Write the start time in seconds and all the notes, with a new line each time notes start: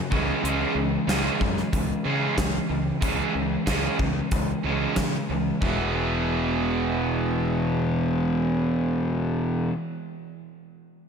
0.11 C#2 C#3 E3 G#3 C#4, kick
0.43 C#2 C#3 E3 G#3 C#4, closed hi-hat
0.75 C#2 C#3 E3 G#3
1.07 C#2 C#3 E3 G#3 C#4, snare, closed hi-hat
1.40 F#2 C#3 E3 G#3, kick
1.57 snare
1.73 C#2 C#3 E3 G#3, kick, closed hi-hat
2.04 C#3 E3 G#3 C#4
2.36 C#2 C#3 E3 G#3, kick, snare, closed hi-hat
2.68 C#2 C#3 E3 G#3
3.01 C#2 C#3 E3 G#3 C#4, kick, closed hi-hat
3.34 C#2 C#3 E3 G#3
3.66 C#2 C#3 E3 G#3 C#4, kick, snare, closed hi-hat
3.99 C#2 C#3 E3 G#3, kick
4.31 C#2 C#3 E3 G#3, kick, closed hi-hat
4.63 C#2 C#3 E3 G#3 C#4
4.96 C#3 E3 G#3, kick, snare, closed hi-hat
5.29 C#2 C#3 E3 G#3
5.61 E1 E2 B2 E3 G#3 B3, kick
5.65 E4